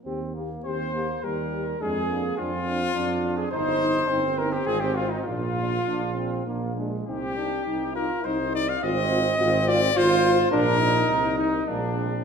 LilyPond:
<<
  \new Staff \with { instrumentName = "Flugelhorn" } { \time 3/4 \key ees \major \tempo 4 = 104 r4 c''4 bes'4 | aes'4 f'4.~ f'16 aes'16 | c''4. bes'16 g'16 aes'16 g'16 f'16 ees'16 | f'2~ f'8 r8 |
g'4. bes'8 c''8 d''16 f''16 | ees''4. d''8 c''4 | bes'4. ees'8 d'4 | }
  \new Staff \with { instrumentName = "Trumpet" } { \time 3/4 \key ees \major r4 c''4 bes'4 | aes'4 f'4.~ f'16 aes'16 | c''4. bes'16 g'16 aes'16 g'16 f'16 ees'16 | f'2~ f'8 r8 |
g'4. bes'8 c''8 d''16 f''16 | ees''4. d''8 c''4 | bes'4. ees'8 d'4 | }
  \new Staff \with { instrumentName = "French horn" } { \time 3/4 \key ees \major g'8 g'8 g'8 g'8 g'8 g'8 | d'8 d'8 d'8 d'8 d'8 d'8 | ees'8 ees'8 ees'8 ees'8 f'8 f'8 | d'8 d'8 d'8 d'8 d'8 d'8 |
ees'8 ees'8 ees'8 ees'8 ees'8 ees'8 | f'8 f'8 f'8 f'8 f'8 f'8 | d'8 d'8 ees'8 ees'8 aes8 aes8 | }
  \new Staff \with { instrumentName = "Trombone" } { \time 3/4 \key ees \major c'8 bes8 c'8 bes8 g4 | aes8 bes8 c'4 d'4 | ees'4 c'2 | bes4 d'8 c'8 bes8 aes8 |
c'8 d'8 ees'8 f'8 ees'4 | c'4 c'4 f'4 | d'8 ees'4. bes8 c'8 | }
  \new Staff \with { instrumentName = "Tuba" } { \clef bass \time 3/4 \key ees \major ees,4 ees,4 ees,4 | f,4 f,4 f,4 | g,,4 g,,4 aes,,4 | bes,,4 bes,,4 bes,,4 |
c,4 c,4 c,4 | aes,,4 aes,,4 aes,,4 | bes,,4 c,4 bes,,4 | }
>>